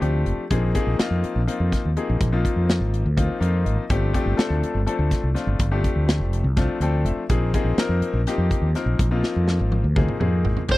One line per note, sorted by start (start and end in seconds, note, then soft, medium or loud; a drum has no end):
0.01 0.24 D2 medium
0.01 0.43 F3 medium
0.01 0.43 A3 medium
0.01 0.43 C4 medium
0.01 0.43 D4 medium
0.01 0.43 G4 medium
0.01 closed hi-hat medium
0.26 0.37 F1 medium
0.26 closed hi-hat medium
0.38 muted fretless electric bass stroke soft
0.51 0.73 A#1 medium
0.51 0.71 F3 medium
0.51 0.71 A#3 medium
0.51 0.71 C4 medium
0.51 0.71 D#4 medium
0.51 0.71 G#4 medium
0.51 kick loud
0.51 closed hi-hat medium
0.75 0.95 F3 medium
0.75 0.95 A#3 medium
0.75 0.96 C4 medium
0.75 0.95 D#4 medium
0.75 0.95 G#4 loud
0.75 kick medium
0.75 closed hi-hat medium
0.87 0.98 A#1 medium
0.99 1.40 F3 medium
0.99 1.40 A#3 medium
0.99 1.40 C4 medium
0.99 1.40 D#4 medium
0.99 1.40 F4 medium
0.99 snare loud
0.99 closed hi-hat medium
1.11 1.22 F2 medium
1.24 muted fretless electric bass stroke soft
1.24 closed hi-hat medium
1.36 1.47 A#1 medium
1.47 1.89 F3 medium
1.47 1.89 A#3 medium
1.47 1.89 C4 medium
1.47 1.89 D#4 medium
1.47 1.89 F4 medium
1.47 closed hi-hat medium
1.60 1.71 F2 medium
1.72 kick medium
1.72 snare soft
1.72 closed hi-hat medium
1.85 1.96 D#2 medium
1.97 2.27 F3 medium
1.97 2.27 A#3 medium
1.97 2.27 C4 medium
1.97 2.27 D#4 medium
1.97 2.27 G#4 medium
1.97 closed hi-hat medium
2.10 2.20 A#1 medium
2.21 2.43 A#1 loud
2.21 kick loud
2.21 closed hi-hat medium
2.32 3.04 F3 medium
2.32 3.04 A#3 medium
2.32 3.04 C4 medium
2.32 3.04 D#4 medium
2.32 3.04 F4 medium
2.45 kick medium
2.45 closed hi-hat medium
2.56 2.79 F2 medium
2.69 snare loud
2.69 closed hi-hat medium
2.80 3.03 G#1 medium
2.94 closed hi-hat medium
3.06 3.28 D2 medium
3.17 3.38 F3 medium
3.17 3.38 A#3 medium
3.17 3.38 C4 medium
3.17 3.38 D#4 medium
3.17 3.38 F4 medium
3.17 kick loud
3.17 closed hi-hat medium
3.28 muted fretless electric bass stroke soft
3.40 3.64 F2 medium
3.40 3.82 F3 medium
3.40 3.82 A#3 medium
3.40 3.83 C4 medium
3.40 3.82 D#4 medium
3.40 3.82 F4 medium
3.40 3.64 F5 medium
3.40 closed hi-hat medium
3.65 3.77 G#1 medium
3.65 3.88 D#5 medium
3.65 closed hi-hat medium
3.78 muted fretless electric bass stroke soft
3.90 4.13 G1 medium
3.90 4.11 F3 medium
3.90 4.11 A3 medium
3.90 4.11 C4 medium
3.90 4.11 D4 medium
3.90 4.11 G4 medium
3.90 kick loud
3.90 closed hi-hat medium
4.13 4.34 F3 medium
4.13 4.35 A3 medium
4.13 4.35 C4 medium
4.13 4.35 D4 medium
4.13 4.35 G4 loud
4.13 kick medium
4.13 closed hi-hat medium
4.26 4.37 G1 medium
4.37 4.79 F3 medium
4.37 4.79 A3 medium
4.37 4.79 C4 medium
4.37 4.79 D4 medium
4.37 4.79 A4 loud
4.37 snare loud
4.37 closed hi-hat medium
4.50 4.62 D2 medium
4.63 muted fretless electric bass stroke soft
4.63 closed hi-hat medium
4.75 4.86 G1 medium
4.86 5.28 F3 medium
4.86 5.28 A3 medium
4.86 5.28 C4 medium
4.86 5.28 D4 medium
4.86 5.28 A4 medium
4.86 closed hi-hat medium
4.99 5.10 D2 medium
5.11 kick medium
5.11 snare soft
5.11 closed hi-hat medium
5.24 5.35 C2 medium
5.34 5.66 F3 medium
5.34 5.66 A3 medium
5.34 5.66 C4 medium
5.34 5.66 D4 medium
5.34 5.66 F4 medium
5.34 snare soft
5.34 closed hi-hat medium
5.47 5.59 G1 medium
5.59 5.82 G1 loud
5.59 kick loud
5.59 closed hi-hat medium
5.71 6.43 F3 medium
5.71 6.43 A3 medium
5.71 6.44 C4 medium
5.71 6.43 D4 medium
5.71 6.43 G4 medium
5.84 kick medium
5.84 closed hi-hat medium
5.96 6.18 D2 medium
6.09 snare loud
6.09 closed hi-hat medium
6.20 6.43 F1 medium
6.33 closed hi-hat medium
6.44 6.67 C2 loud
6.57 6.77 F3 medium
6.57 6.78 A3 medium
6.57 6.77 C4 medium
6.57 6.77 D4 medium
6.57 6.77 F4 medium
6.57 kick loud
6.57 snare soft
6.57 closed hi-hat medium
6.69 muted fretless electric bass stroke soft
6.80 7.03 D2 medium
6.80 7.22 F3 medium
6.80 7.22 A3 medium
6.80 7.22 C4 medium
6.80 7.22 D4 medium
6.80 7.23 A4 medium
6.80 7.04 G5 medium
6.80 closed hi-hat medium
7.05 7.16 F1 medium
7.05 7.28 E5 medium
7.05 closed hi-hat medium
7.16 muted fretless electric bass stroke soft
7.29 7.52 A#1 loud
7.29 7.50 F3 medium
7.29 7.50 A#3 medium
7.29 7.50 C4 medium
7.29 7.50 D#4 medium
7.29 7.50 G#4 medium
7.29 kick loud
7.29 closed hi-hat medium
7.54 7.74 F3 medium
7.54 7.74 A#3 medium
7.54 7.75 C4 medium
7.54 7.75 D#4 medium
7.54 7.75 G#4 medium
7.54 kick medium
7.54 closed hi-hat medium
7.64 7.76 A#1 medium
7.78 8.19 F3 medium
7.78 8.19 A#3 medium
7.78 8.19 C4 medium
7.78 8.19 D#4 medium
7.78 8.20 A#4 loud
7.78 snare loud
7.78 closed hi-hat medium
7.89 8.01 F2 medium
8.02 muted fretless electric bass stroke soft
8.02 closed hi-hat medium
8.13 8.25 A#1 medium
8.27 8.68 F3 medium
8.27 8.68 A#3 medium
8.27 8.68 C4 medium
8.27 8.68 D#4 medium
8.27 8.68 G4 medium
8.27 snare soft
8.27 closed hi-hat medium
8.38 8.49 F2 medium
8.51 kick medium
8.51 closed hi-hat medium
8.62 8.73 D#2 medium
8.75 9.06 F3 medium
8.75 9.06 A#3 medium
8.75 9.06 C4 medium
8.75 9.06 D#4 medium
8.75 9.06 A#4 medium
8.75 snare soft
8.75 closed hi-hat medium
8.86 8.98 A#1 medium
8.99 9.22 A#1 loud
8.99 kick loud
8.99 closed hi-hat medium
9.11 9.83 F3 medium
9.11 9.83 A#3 medium
9.11 9.83 C4 medium
9.11 9.83 D#4 medium
9.11 9.83 F4 medium
9.23 snare medium
9.36 9.58 F2 medium
9.48 snare medium
9.59 9.82 G#1 medium
9.59 high tom medium
9.72 high tom medium
9.84 10.06 D2 medium
9.96 10.16 F3 medium
9.96 10.16 A#3 medium
9.96 10.16 C4 medium
9.96 10.17 D#4 medium
9.96 10.17 G#4 medium
9.96 kick loud
9.96 mid tom medium
10.09 muted fretless electric bass stroke soft
10.09 mid tom medium
10.20 10.43 F2 medium
10.20 10.61 F3 medium
10.20 10.61 A#3 medium
10.20 10.61 C4 medium
10.20 10.61 D#4 medium
10.20 10.61 G#4 medium
10.20 mid tom medium
10.45 10.56 G#1 medium
10.45 floor tom medium
10.57 muted fretless electric bass stroke soft
10.57 floor tom medium
10.68 10.78 G1 medium
10.68 10.78 F3 medium
10.68 10.78 A3 medium
10.68 10.78 C4 medium
10.68 10.78 D4 medium
10.68 10.78 G4 medium
10.68 10.78 C5 medium
10.68 kick loud
10.68 crash medium